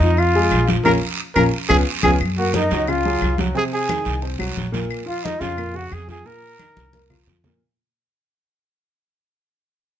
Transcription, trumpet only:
0.00 0.20 D#4 medium
0.19 0.69 F4 loud
0.84 0.93 A#4 medium
1.35 1.43 A#4 medium
1.69 1.77 G#4 loud
2.03 2.11 G#4 medium
2.37 2.53 F#4 medium
2.55 2.90 D#4 medium
2.89 3.39 F4 medium
3.57 3.64 G#4 loud
3.73 4.20 G#4 medium
5.08 5.26 F4 medium
5.24 5.41 D#4 medium
5.40 5.77 F4 medium
5.76 5.95 F#4 medium
5.93 6.10 G#4 loud
6.11 6.28 G#4 medium
6.26 7.27 A#4 loud

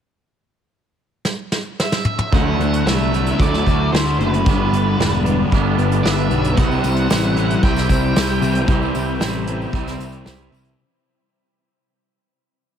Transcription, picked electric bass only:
2.33 2.55 D2 medium
2.58 2.81 D2 medium
2.86 3.31 C2 medium
3.39 3.62 D2 medium
3.67 3.89 D2 medium
3.92 4.15 D2 medium
4.18 4.46 F#1 medium
4.46 4.69 G1 loud
4.71 4.95 G1 medium
4.98 5.44 E1 loud
5.52 5.75 G1 medium
5.77 6.01 G1 medium
6.04 6.27 G1 medium
6.30 6.53 B1 medium
6.58 6.80 C2 loud
6.84 7.07 C2 medium
7.11 7.56 A1 medium
7.63 7.86 C2 medium
7.89 8.12 C2 medium
8.16 8.39 C2 medium
8.42 8.64 C2 medium
8.68 8.91 C2 loud
8.96 9.18 C2 medium
9.20 9.65 A1 medium
9.72 9.95 C2 medium
9.99 10.22 C2 medium
10.27 10.49 C2 medium
10.52 10.74 C2 medium

